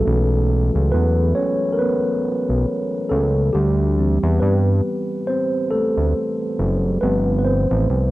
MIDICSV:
0, 0, Header, 1, 3, 480
1, 0, Start_track
1, 0, Tempo, 869565
1, 35, Time_signature, 4, 2, 24, 8
1, 4477, End_track
2, 0, Start_track
2, 0, Title_t, "Tine electric piano"
2, 0, Program_c, 0, 4
2, 0, Control_c, 0, 64, 127
2, 0, Note_on_c, 0, 52, 47
2, 0, Note_on_c, 0, 54, 70
2, 0, Note_on_c, 0, 57, 68
2, 0, Note_on_c, 0, 59, 71
2, 0, Note_on_c, 0, 61, 55
2, 0, Note_on_c, 0, 66, 91
2, 0, Note_on_c, 0, 69, 88
2, 0, Note_on_c, 0, 71, 96
2, 29, Note_off_c, 0, 52, 0
2, 29, Note_on_c, 0, 52, 58
2, 33, Note_off_c, 0, 57, 0
2, 33, Note_on_c, 0, 57, 51
2, 36, Note_off_c, 0, 61, 0
2, 36, Note_on_c, 0, 61, 61
2, 506, Note_off_c, 0, 71, 0
2, 506, Note_on_c, 0, 71, 96
2, 519, Note_off_c, 0, 59, 0
2, 519, Note_on_c, 0, 59, 70
2, 531, Note_off_c, 0, 69, 0
2, 730, Note_off_c, 0, 52, 0
2, 732, Note_off_c, 0, 57, 0
2, 734, Note_off_c, 0, 61, 0
2, 740, Note_off_c, 0, 59, 0
2, 745, Note_on_c, 0, 73, 88
2, 758, Note_off_c, 0, 71, 0
2, 758, Note_on_c, 0, 61, 67
2, 840, Note_off_c, 0, 73, 0
2, 850, Note_off_c, 0, 61, 0
2, 953, Note_on_c, 0, 70, 71
2, 987, Note_on_c, 0, 71, 94
2, 991, Note_off_c, 0, 70, 0
2, 999, Note_on_c, 0, 59, 76
2, 1695, Note_off_c, 0, 59, 0
2, 1708, Note_on_c, 0, 69, 85
2, 1720, Note_on_c, 0, 57, 61
2, 1733, Note_off_c, 0, 71, 0
2, 1941, Note_off_c, 0, 57, 0
2, 1947, Note_on_c, 0, 67, 91
2, 1959, Note_off_c, 0, 69, 0
2, 1959, Note_on_c, 0, 55, 72
2, 1961, Control_c, 0, 64, 0
2, 1963, Note_off_c, 0, 54, 0
2, 1964, Note_off_c, 0, 66, 0
2, 2055, Control_c, 0, 64, 127
2, 2190, Note_off_c, 0, 55, 0
2, 2193, Note_on_c, 0, 52, 56
2, 2197, Note_on_c, 0, 55, 53
2, 2200, Note_on_c, 0, 60, 63
2, 2409, Note_off_c, 0, 67, 0
2, 2429, Note_on_c, 0, 71, 86
2, 2441, Note_on_c, 0, 59, 69
2, 2892, Note_off_c, 0, 52, 0
2, 2894, Note_off_c, 0, 55, 0
2, 2896, Note_off_c, 0, 59, 0
2, 2896, Note_off_c, 0, 60, 0
2, 2910, Note_on_c, 0, 72, 92
2, 2922, Note_on_c, 0, 60, 71
2, 2926, Note_off_c, 0, 71, 0
2, 3142, Note_off_c, 0, 60, 0
2, 3150, Note_on_c, 0, 69, 95
2, 3160, Note_off_c, 0, 72, 0
2, 3163, Note_on_c, 0, 57, 73
2, 3857, Note_off_c, 0, 57, 0
2, 3870, Note_on_c, 0, 71, 93
2, 3874, Note_on_c, 0, 53, 56
2, 3878, Note_on_c, 0, 57, 48
2, 3882, Control_c, 0, 64, 0
2, 3882, Note_on_c, 0, 59, 77
2, 3882, Note_on_c, 0, 60, 63
2, 3894, Note_off_c, 0, 69, 0
2, 3975, Control_c, 0, 64, 127
2, 4064, Note_off_c, 0, 71, 0
2, 4071, Note_off_c, 0, 59, 0
2, 4077, Note_on_c, 0, 71, 62
2, 4110, Note_on_c, 0, 72, 88
2, 4113, Note_off_c, 0, 71, 0
2, 4116, Note_off_c, 0, 60, 0
2, 4122, Note_on_c, 0, 60, 66
2, 4477, Note_off_c, 0, 53, 0
2, 4477, Note_off_c, 0, 57, 0
2, 4477, Note_off_c, 0, 60, 0
2, 4477, Note_off_c, 0, 72, 0
2, 4477, End_track
3, 0, Start_track
3, 0, Title_t, "Analog synth bass"
3, 0, Program_c, 1, 38
3, 40, Note_on_c, 1, 35, 101
3, 392, Note_off_c, 1, 35, 0
3, 416, Note_on_c, 1, 37, 85
3, 508, Note_off_c, 1, 37, 0
3, 518, Note_on_c, 1, 40, 91
3, 736, Note_off_c, 1, 40, 0
3, 1376, Note_on_c, 1, 35, 83
3, 1469, Note_off_c, 1, 35, 0
3, 1718, Note_on_c, 1, 37, 102
3, 1936, Note_off_c, 1, 37, 0
3, 1959, Note_on_c, 1, 38, 101
3, 2311, Note_off_c, 1, 38, 0
3, 2336, Note_on_c, 1, 40, 97
3, 2429, Note_off_c, 1, 40, 0
3, 2440, Note_on_c, 1, 43, 91
3, 2657, Note_off_c, 1, 43, 0
3, 3297, Note_on_c, 1, 38, 80
3, 3389, Note_off_c, 1, 38, 0
3, 3640, Note_on_c, 1, 30, 99
3, 3857, Note_off_c, 1, 30, 0
3, 3881, Note_on_c, 1, 31, 109
3, 4232, Note_off_c, 1, 31, 0
3, 4256, Note_on_c, 1, 33, 104
3, 4349, Note_off_c, 1, 33, 0
3, 4361, Note_on_c, 1, 36, 86
3, 4477, Note_off_c, 1, 36, 0
3, 4477, End_track
0, 0, End_of_file